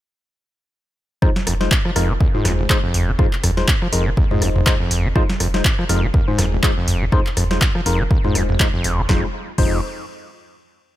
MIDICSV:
0, 0, Header, 1, 5, 480
1, 0, Start_track
1, 0, Key_signature, -4, "minor"
1, 0, Tempo, 491803
1, 1192, Time_signature, 4, 2, 24, 8
1, 10702, End_track
2, 0, Start_track
2, 0, Title_t, "Tine electric piano"
2, 0, Program_c, 0, 4
2, 1192, Note_on_c, 0, 56, 93
2, 1192, Note_on_c, 0, 63, 85
2, 1192, Note_on_c, 0, 65, 88
2, 1192, Note_on_c, 0, 72, 102
2, 1259, Note_off_c, 0, 63, 0
2, 1259, Note_off_c, 0, 65, 0
2, 1259, Note_off_c, 0, 72, 0
2, 1260, Note_off_c, 0, 56, 0
2, 1567, Note_on_c, 0, 56, 82
2, 1567, Note_on_c, 0, 63, 75
2, 1567, Note_on_c, 0, 65, 75
2, 1567, Note_on_c, 0, 72, 93
2, 1651, Note_off_c, 0, 56, 0
2, 1651, Note_off_c, 0, 63, 0
2, 1651, Note_off_c, 0, 65, 0
2, 1651, Note_off_c, 0, 72, 0
2, 1912, Note_on_c, 0, 56, 86
2, 1912, Note_on_c, 0, 63, 79
2, 1912, Note_on_c, 0, 65, 78
2, 1912, Note_on_c, 0, 70, 95
2, 2020, Note_off_c, 0, 56, 0
2, 2020, Note_off_c, 0, 63, 0
2, 2020, Note_off_c, 0, 65, 0
2, 2020, Note_off_c, 0, 70, 0
2, 2287, Note_on_c, 0, 56, 75
2, 2287, Note_on_c, 0, 63, 68
2, 2287, Note_on_c, 0, 65, 67
2, 2287, Note_on_c, 0, 72, 82
2, 2607, Note_off_c, 0, 56, 0
2, 2607, Note_off_c, 0, 63, 0
2, 2607, Note_off_c, 0, 65, 0
2, 2607, Note_off_c, 0, 72, 0
2, 2631, Note_on_c, 0, 65, 69
2, 2632, Note_on_c, 0, 56, 74
2, 2632, Note_on_c, 0, 63, 68
2, 2632, Note_on_c, 0, 72, 84
2, 2699, Note_off_c, 0, 65, 0
2, 2699, Note_off_c, 0, 72, 0
2, 2700, Note_off_c, 0, 56, 0
2, 2700, Note_off_c, 0, 63, 0
2, 3111, Note_on_c, 0, 56, 95
2, 3111, Note_on_c, 0, 72, 104
2, 3112, Note_on_c, 0, 63, 87
2, 3112, Note_on_c, 0, 65, 88
2, 3179, Note_off_c, 0, 56, 0
2, 3179, Note_off_c, 0, 63, 0
2, 3179, Note_off_c, 0, 72, 0
2, 3180, Note_off_c, 0, 65, 0
2, 3486, Note_on_c, 0, 63, 75
2, 3487, Note_on_c, 0, 56, 82
2, 3487, Note_on_c, 0, 65, 75
2, 3487, Note_on_c, 0, 72, 90
2, 3571, Note_off_c, 0, 56, 0
2, 3571, Note_off_c, 0, 63, 0
2, 3571, Note_off_c, 0, 65, 0
2, 3571, Note_off_c, 0, 72, 0
2, 3831, Note_on_c, 0, 56, 87
2, 3831, Note_on_c, 0, 63, 80
2, 3831, Note_on_c, 0, 65, 79
2, 3831, Note_on_c, 0, 70, 95
2, 3940, Note_off_c, 0, 56, 0
2, 3940, Note_off_c, 0, 63, 0
2, 3940, Note_off_c, 0, 65, 0
2, 3940, Note_off_c, 0, 70, 0
2, 4207, Note_on_c, 0, 63, 70
2, 4207, Note_on_c, 0, 65, 69
2, 4208, Note_on_c, 0, 56, 75
2, 4208, Note_on_c, 0, 72, 80
2, 4527, Note_off_c, 0, 56, 0
2, 4527, Note_off_c, 0, 63, 0
2, 4527, Note_off_c, 0, 65, 0
2, 4527, Note_off_c, 0, 72, 0
2, 4552, Note_on_c, 0, 56, 74
2, 4552, Note_on_c, 0, 63, 68
2, 4552, Note_on_c, 0, 65, 68
2, 4552, Note_on_c, 0, 72, 82
2, 4620, Note_off_c, 0, 56, 0
2, 4620, Note_off_c, 0, 63, 0
2, 4620, Note_off_c, 0, 65, 0
2, 4620, Note_off_c, 0, 72, 0
2, 5032, Note_on_c, 0, 56, 97
2, 5032, Note_on_c, 0, 63, 88
2, 5032, Note_on_c, 0, 65, 89
2, 5032, Note_on_c, 0, 72, 107
2, 5100, Note_off_c, 0, 56, 0
2, 5100, Note_off_c, 0, 63, 0
2, 5100, Note_off_c, 0, 65, 0
2, 5100, Note_off_c, 0, 72, 0
2, 5406, Note_on_c, 0, 65, 77
2, 5407, Note_on_c, 0, 56, 84
2, 5407, Note_on_c, 0, 63, 76
2, 5407, Note_on_c, 0, 72, 94
2, 5490, Note_off_c, 0, 65, 0
2, 5491, Note_off_c, 0, 56, 0
2, 5491, Note_off_c, 0, 63, 0
2, 5491, Note_off_c, 0, 72, 0
2, 5751, Note_on_c, 0, 56, 87
2, 5751, Note_on_c, 0, 63, 78
2, 5751, Note_on_c, 0, 65, 80
2, 5751, Note_on_c, 0, 70, 98
2, 5860, Note_off_c, 0, 56, 0
2, 5860, Note_off_c, 0, 63, 0
2, 5860, Note_off_c, 0, 65, 0
2, 5860, Note_off_c, 0, 70, 0
2, 6126, Note_on_c, 0, 56, 75
2, 6126, Note_on_c, 0, 63, 70
2, 6127, Note_on_c, 0, 65, 69
2, 6127, Note_on_c, 0, 72, 83
2, 6446, Note_off_c, 0, 56, 0
2, 6446, Note_off_c, 0, 63, 0
2, 6446, Note_off_c, 0, 65, 0
2, 6446, Note_off_c, 0, 72, 0
2, 6471, Note_on_c, 0, 72, 81
2, 6472, Note_on_c, 0, 56, 77
2, 6472, Note_on_c, 0, 63, 70
2, 6472, Note_on_c, 0, 65, 70
2, 6539, Note_off_c, 0, 56, 0
2, 6539, Note_off_c, 0, 63, 0
2, 6539, Note_off_c, 0, 65, 0
2, 6539, Note_off_c, 0, 72, 0
2, 6951, Note_on_c, 0, 63, 85
2, 6952, Note_on_c, 0, 56, 98
2, 6952, Note_on_c, 0, 65, 89
2, 6952, Note_on_c, 0, 72, 107
2, 7019, Note_off_c, 0, 56, 0
2, 7019, Note_off_c, 0, 63, 0
2, 7019, Note_off_c, 0, 65, 0
2, 7019, Note_off_c, 0, 72, 0
2, 7327, Note_on_c, 0, 56, 82
2, 7327, Note_on_c, 0, 63, 75
2, 7327, Note_on_c, 0, 65, 76
2, 7328, Note_on_c, 0, 72, 94
2, 7411, Note_off_c, 0, 56, 0
2, 7411, Note_off_c, 0, 63, 0
2, 7411, Note_off_c, 0, 65, 0
2, 7411, Note_off_c, 0, 72, 0
2, 7671, Note_on_c, 0, 70, 97
2, 7672, Note_on_c, 0, 56, 87
2, 7672, Note_on_c, 0, 63, 82
2, 7672, Note_on_c, 0, 65, 81
2, 7780, Note_off_c, 0, 56, 0
2, 7780, Note_off_c, 0, 63, 0
2, 7780, Note_off_c, 0, 65, 0
2, 7780, Note_off_c, 0, 70, 0
2, 8047, Note_on_c, 0, 56, 73
2, 8047, Note_on_c, 0, 63, 68
2, 8047, Note_on_c, 0, 65, 71
2, 8048, Note_on_c, 0, 72, 83
2, 8367, Note_off_c, 0, 56, 0
2, 8367, Note_off_c, 0, 63, 0
2, 8367, Note_off_c, 0, 65, 0
2, 8367, Note_off_c, 0, 72, 0
2, 8392, Note_on_c, 0, 56, 74
2, 8392, Note_on_c, 0, 63, 69
2, 8392, Note_on_c, 0, 65, 69
2, 8392, Note_on_c, 0, 72, 80
2, 8460, Note_off_c, 0, 56, 0
2, 8460, Note_off_c, 0, 63, 0
2, 8460, Note_off_c, 0, 65, 0
2, 8460, Note_off_c, 0, 72, 0
2, 8872, Note_on_c, 0, 56, 86
2, 8872, Note_on_c, 0, 63, 80
2, 8872, Note_on_c, 0, 65, 80
2, 8872, Note_on_c, 0, 72, 97
2, 9017, Note_off_c, 0, 56, 0
2, 9017, Note_off_c, 0, 63, 0
2, 9017, Note_off_c, 0, 72, 0
2, 9018, Note_off_c, 0, 65, 0
2, 9352, Note_on_c, 0, 56, 87
2, 9352, Note_on_c, 0, 63, 80
2, 9352, Note_on_c, 0, 65, 78
2, 9352, Note_on_c, 0, 72, 95
2, 9536, Note_off_c, 0, 56, 0
2, 9536, Note_off_c, 0, 63, 0
2, 9536, Note_off_c, 0, 65, 0
2, 9536, Note_off_c, 0, 72, 0
2, 10702, End_track
3, 0, Start_track
3, 0, Title_t, "Acid bass"
3, 0, Program_c, 1, 38
3, 1192, Note_on_c, 1, 41, 85
3, 1266, Note_off_c, 1, 41, 0
3, 1432, Note_on_c, 1, 41, 77
3, 1506, Note_off_c, 1, 41, 0
3, 1807, Note_on_c, 1, 53, 78
3, 1865, Note_off_c, 1, 53, 0
3, 1911, Note_on_c, 1, 41, 101
3, 2047, Note_on_c, 1, 53, 101
3, 2062, Note_off_c, 1, 41, 0
3, 2082, Note_off_c, 1, 53, 0
3, 2153, Note_on_c, 1, 39, 81
3, 2227, Note_off_c, 1, 39, 0
3, 2288, Note_on_c, 1, 44, 79
3, 2393, Note_on_c, 1, 41, 78
3, 2408, Note_off_c, 1, 44, 0
3, 2467, Note_off_c, 1, 41, 0
3, 2527, Note_on_c, 1, 29, 77
3, 2585, Note_off_c, 1, 29, 0
3, 2767, Note_on_c, 1, 41, 77
3, 3007, Note_on_c, 1, 53, 102
3, 3022, Note_off_c, 1, 41, 0
3, 3042, Note_off_c, 1, 53, 0
3, 3111, Note_on_c, 1, 41, 86
3, 3186, Note_off_c, 1, 41, 0
3, 3352, Note_on_c, 1, 41, 79
3, 3426, Note_off_c, 1, 41, 0
3, 3727, Note_on_c, 1, 53, 78
3, 3785, Note_off_c, 1, 53, 0
3, 3832, Note_on_c, 1, 41, 101
3, 3967, Note_on_c, 1, 53, 102
3, 3982, Note_off_c, 1, 41, 0
3, 4002, Note_off_c, 1, 53, 0
3, 4072, Note_on_c, 1, 39, 82
3, 4146, Note_off_c, 1, 39, 0
3, 4207, Note_on_c, 1, 44, 76
3, 4312, Note_on_c, 1, 41, 78
3, 4327, Note_off_c, 1, 44, 0
3, 4386, Note_off_c, 1, 41, 0
3, 4447, Note_on_c, 1, 29, 77
3, 4505, Note_off_c, 1, 29, 0
3, 4688, Note_on_c, 1, 41, 77
3, 4928, Note_on_c, 1, 53, 105
3, 4942, Note_off_c, 1, 41, 0
3, 4962, Note_off_c, 1, 53, 0
3, 5033, Note_on_c, 1, 41, 88
3, 5107, Note_off_c, 1, 41, 0
3, 5271, Note_on_c, 1, 41, 81
3, 5346, Note_off_c, 1, 41, 0
3, 5647, Note_on_c, 1, 53, 78
3, 5705, Note_off_c, 1, 53, 0
3, 5752, Note_on_c, 1, 41, 100
3, 5888, Note_on_c, 1, 53, 103
3, 5903, Note_off_c, 1, 41, 0
3, 5922, Note_off_c, 1, 53, 0
3, 5993, Note_on_c, 1, 39, 83
3, 6067, Note_off_c, 1, 39, 0
3, 6128, Note_on_c, 1, 44, 77
3, 6232, Note_on_c, 1, 41, 78
3, 6246, Note_off_c, 1, 44, 0
3, 6306, Note_off_c, 1, 41, 0
3, 6367, Note_on_c, 1, 29, 78
3, 6425, Note_off_c, 1, 29, 0
3, 6607, Note_on_c, 1, 41, 77
3, 6848, Note_on_c, 1, 53, 102
3, 6863, Note_off_c, 1, 41, 0
3, 6882, Note_off_c, 1, 53, 0
3, 6953, Note_on_c, 1, 41, 87
3, 7027, Note_off_c, 1, 41, 0
3, 7191, Note_on_c, 1, 41, 80
3, 7266, Note_off_c, 1, 41, 0
3, 7566, Note_on_c, 1, 53, 78
3, 7624, Note_off_c, 1, 53, 0
3, 7671, Note_on_c, 1, 41, 102
3, 7806, Note_on_c, 1, 53, 100
3, 7821, Note_off_c, 1, 41, 0
3, 7841, Note_off_c, 1, 53, 0
3, 7912, Note_on_c, 1, 39, 81
3, 7986, Note_off_c, 1, 39, 0
3, 8048, Note_on_c, 1, 44, 76
3, 8152, Note_on_c, 1, 41, 79
3, 8166, Note_off_c, 1, 44, 0
3, 8226, Note_off_c, 1, 41, 0
3, 8287, Note_on_c, 1, 29, 78
3, 8345, Note_off_c, 1, 29, 0
3, 8527, Note_on_c, 1, 41, 75
3, 8767, Note_on_c, 1, 53, 104
3, 8781, Note_off_c, 1, 41, 0
3, 8802, Note_off_c, 1, 53, 0
3, 8871, Note_on_c, 1, 41, 99
3, 9017, Note_off_c, 1, 41, 0
3, 9352, Note_on_c, 1, 41, 92
3, 9575, Note_off_c, 1, 41, 0
3, 10702, End_track
4, 0, Start_track
4, 0, Title_t, "Sub bass"
4, 0, Program_c, 2, 38
4, 1432, Note_on_c, 2, 29, 101
4, 1638, Note_off_c, 2, 29, 0
4, 1913, Note_on_c, 2, 29, 92
4, 2118, Note_off_c, 2, 29, 0
4, 2393, Note_on_c, 2, 29, 87
4, 2598, Note_off_c, 2, 29, 0
4, 2872, Note_on_c, 2, 29, 97
4, 3078, Note_off_c, 2, 29, 0
4, 3352, Note_on_c, 2, 29, 100
4, 3558, Note_off_c, 2, 29, 0
4, 3832, Note_on_c, 2, 29, 91
4, 4038, Note_off_c, 2, 29, 0
4, 4312, Note_on_c, 2, 29, 90
4, 4518, Note_off_c, 2, 29, 0
4, 4792, Note_on_c, 2, 29, 97
4, 4998, Note_off_c, 2, 29, 0
4, 5273, Note_on_c, 2, 29, 102
4, 5478, Note_off_c, 2, 29, 0
4, 5751, Note_on_c, 2, 29, 91
4, 5958, Note_off_c, 2, 29, 0
4, 6232, Note_on_c, 2, 29, 89
4, 6438, Note_off_c, 2, 29, 0
4, 6713, Note_on_c, 2, 29, 97
4, 6918, Note_off_c, 2, 29, 0
4, 7192, Note_on_c, 2, 29, 99
4, 7398, Note_off_c, 2, 29, 0
4, 7673, Note_on_c, 2, 29, 91
4, 7878, Note_off_c, 2, 29, 0
4, 8152, Note_on_c, 2, 29, 89
4, 8358, Note_off_c, 2, 29, 0
4, 8633, Note_on_c, 2, 29, 94
4, 8838, Note_off_c, 2, 29, 0
4, 8873, Note_on_c, 2, 29, 98
4, 9018, Note_off_c, 2, 29, 0
4, 9352, Note_on_c, 2, 29, 97
4, 9575, Note_off_c, 2, 29, 0
4, 10702, End_track
5, 0, Start_track
5, 0, Title_t, "Drums"
5, 1193, Note_on_c, 9, 36, 117
5, 1193, Note_on_c, 9, 37, 58
5, 1290, Note_off_c, 9, 36, 0
5, 1290, Note_off_c, 9, 37, 0
5, 1328, Note_on_c, 9, 38, 57
5, 1426, Note_off_c, 9, 38, 0
5, 1433, Note_on_c, 9, 37, 60
5, 1433, Note_on_c, 9, 46, 104
5, 1531, Note_off_c, 9, 37, 0
5, 1531, Note_off_c, 9, 46, 0
5, 1569, Note_on_c, 9, 38, 56
5, 1666, Note_off_c, 9, 38, 0
5, 1673, Note_on_c, 9, 36, 119
5, 1676, Note_on_c, 9, 39, 120
5, 1770, Note_off_c, 9, 36, 0
5, 1773, Note_off_c, 9, 39, 0
5, 1808, Note_on_c, 9, 37, 38
5, 1906, Note_off_c, 9, 37, 0
5, 1912, Note_on_c, 9, 37, 66
5, 1912, Note_on_c, 9, 46, 110
5, 2010, Note_off_c, 9, 37, 0
5, 2010, Note_off_c, 9, 46, 0
5, 2152, Note_on_c, 9, 36, 120
5, 2250, Note_off_c, 9, 36, 0
5, 2391, Note_on_c, 9, 37, 57
5, 2391, Note_on_c, 9, 38, 58
5, 2391, Note_on_c, 9, 45, 93
5, 2391, Note_on_c, 9, 46, 107
5, 2489, Note_off_c, 9, 37, 0
5, 2489, Note_off_c, 9, 38, 0
5, 2489, Note_off_c, 9, 45, 0
5, 2489, Note_off_c, 9, 46, 0
5, 2632, Note_on_c, 9, 36, 119
5, 2634, Note_on_c, 9, 39, 125
5, 2730, Note_off_c, 9, 36, 0
5, 2732, Note_off_c, 9, 39, 0
5, 2872, Note_on_c, 9, 45, 83
5, 2872, Note_on_c, 9, 46, 106
5, 2970, Note_off_c, 9, 45, 0
5, 2970, Note_off_c, 9, 46, 0
5, 3112, Note_on_c, 9, 36, 125
5, 3113, Note_on_c, 9, 37, 60
5, 3210, Note_off_c, 9, 36, 0
5, 3210, Note_off_c, 9, 37, 0
5, 3250, Note_on_c, 9, 39, 38
5, 3348, Note_off_c, 9, 39, 0
5, 3353, Note_on_c, 9, 37, 59
5, 3353, Note_on_c, 9, 45, 84
5, 3353, Note_on_c, 9, 46, 111
5, 3451, Note_off_c, 9, 37, 0
5, 3451, Note_off_c, 9, 45, 0
5, 3451, Note_off_c, 9, 46, 0
5, 3487, Note_on_c, 9, 38, 58
5, 3585, Note_off_c, 9, 38, 0
5, 3592, Note_on_c, 9, 36, 125
5, 3594, Note_on_c, 9, 39, 123
5, 3690, Note_off_c, 9, 36, 0
5, 3692, Note_off_c, 9, 39, 0
5, 3728, Note_on_c, 9, 37, 39
5, 3826, Note_off_c, 9, 37, 0
5, 3831, Note_on_c, 9, 46, 113
5, 3929, Note_off_c, 9, 46, 0
5, 4072, Note_on_c, 9, 36, 125
5, 4170, Note_off_c, 9, 36, 0
5, 4207, Note_on_c, 9, 45, 97
5, 4305, Note_off_c, 9, 45, 0
5, 4312, Note_on_c, 9, 37, 61
5, 4312, Note_on_c, 9, 46, 108
5, 4409, Note_off_c, 9, 37, 0
5, 4409, Note_off_c, 9, 46, 0
5, 4446, Note_on_c, 9, 45, 98
5, 4544, Note_off_c, 9, 45, 0
5, 4552, Note_on_c, 9, 36, 127
5, 4554, Note_on_c, 9, 39, 124
5, 4650, Note_off_c, 9, 36, 0
5, 4652, Note_off_c, 9, 39, 0
5, 4792, Note_on_c, 9, 45, 87
5, 4792, Note_on_c, 9, 46, 114
5, 4889, Note_off_c, 9, 45, 0
5, 4889, Note_off_c, 9, 46, 0
5, 5032, Note_on_c, 9, 36, 124
5, 5032, Note_on_c, 9, 37, 63
5, 5129, Note_off_c, 9, 37, 0
5, 5130, Note_off_c, 9, 36, 0
5, 5168, Note_on_c, 9, 38, 60
5, 5265, Note_off_c, 9, 38, 0
5, 5272, Note_on_c, 9, 37, 58
5, 5272, Note_on_c, 9, 46, 113
5, 5370, Note_off_c, 9, 37, 0
5, 5370, Note_off_c, 9, 46, 0
5, 5408, Note_on_c, 9, 38, 61
5, 5505, Note_off_c, 9, 38, 0
5, 5512, Note_on_c, 9, 36, 127
5, 5515, Note_on_c, 9, 39, 120
5, 5610, Note_off_c, 9, 36, 0
5, 5612, Note_off_c, 9, 39, 0
5, 5648, Note_on_c, 9, 37, 40
5, 5746, Note_off_c, 9, 37, 0
5, 5752, Note_on_c, 9, 37, 66
5, 5752, Note_on_c, 9, 46, 113
5, 5850, Note_off_c, 9, 37, 0
5, 5850, Note_off_c, 9, 46, 0
5, 5992, Note_on_c, 9, 36, 125
5, 6090, Note_off_c, 9, 36, 0
5, 6232, Note_on_c, 9, 37, 64
5, 6232, Note_on_c, 9, 38, 61
5, 6232, Note_on_c, 9, 45, 98
5, 6232, Note_on_c, 9, 46, 113
5, 6329, Note_off_c, 9, 37, 0
5, 6329, Note_off_c, 9, 38, 0
5, 6329, Note_off_c, 9, 45, 0
5, 6329, Note_off_c, 9, 46, 0
5, 6472, Note_on_c, 9, 36, 127
5, 6474, Note_on_c, 9, 39, 126
5, 6570, Note_off_c, 9, 36, 0
5, 6572, Note_off_c, 9, 39, 0
5, 6712, Note_on_c, 9, 45, 90
5, 6712, Note_on_c, 9, 46, 114
5, 6810, Note_off_c, 9, 45, 0
5, 6810, Note_off_c, 9, 46, 0
5, 6952, Note_on_c, 9, 36, 123
5, 6952, Note_on_c, 9, 37, 64
5, 7050, Note_off_c, 9, 36, 0
5, 7050, Note_off_c, 9, 37, 0
5, 7091, Note_on_c, 9, 39, 35
5, 7188, Note_off_c, 9, 39, 0
5, 7192, Note_on_c, 9, 37, 59
5, 7192, Note_on_c, 9, 45, 86
5, 7192, Note_on_c, 9, 46, 110
5, 7290, Note_off_c, 9, 37, 0
5, 7290, Note_off_c, 9, 45, 0
5, 7290, Note_off_c, 9, 46, 0
5, 7327, Note_on_c, 9, 38, 63
5, 7425, Note_off_c, 9, 38, 0
5, 7432, Note_on_c, 9, 36, 127
5, 7433, Note_on_c, 9, 39, 119
5, 7530, Note_off_c, 9, 36, 0
5, 7531, Note_off_c, 9, 39, 0
5, 7567, Note_on_c, 9, 37, 43
5, 7665, Note_off_c, 9, 37, 0
5, 7671, Note_on_c, 9, 46, 113
5, 7769, Note_off_c, 9, 46, 0
5, 7912, Note_on_c, 9, 36, 123
5, 8010, Note_off_c, 9, 36, 0
5, 8046, Note_on_c, 9, 45, 97
5, 8144, Note_off_c, 9, 45, 0
5, 8151, Note_on_c, 9, 37, 62
5, 8151, Note_on_c, 9, 46, 110
5, 8249, Note_off_c, 9, 37, 0
5, 8249, Note_off_c, 9, 46, 0
5, 8287, Note_on_c, 9, 45, 97
5, 8384, Note_off_c, 9, 45, 0
5, 8392, Note_on_c, 9, 36, 124
5, 8394, Note_on_c, 9, 39, 120
5, 8490, Note_off_c, 9, 36, 0
5, 8492, Note_off_c, 9, 39, 0
5, 8631, Note_on_c, 9, 45, 90
5, 8631, Note_on_c, 9, 46, 112
5, 8729, Note_off_c, 9, 45, 0
5, 8729, Note_off_c, 9, 46, 0
5, 8871, Note_on_c, 9, 38, 90
5, 8872, Note_on_c, 9, 36, 113
5, 8969, Note_off_c, 9, 38, 0
5, 8970, Note_off_c, 9, 36, 0
5, 9351, Note_on_c, 9, 49, 88
5, 9353, Note_on_c, 9, 36, 113
5, 9449, Note_off_c, 9, 49, 0
5, 9450, Note_off_c, 9, 36, 0
5, 10702, End_track
0, 0, End_of_file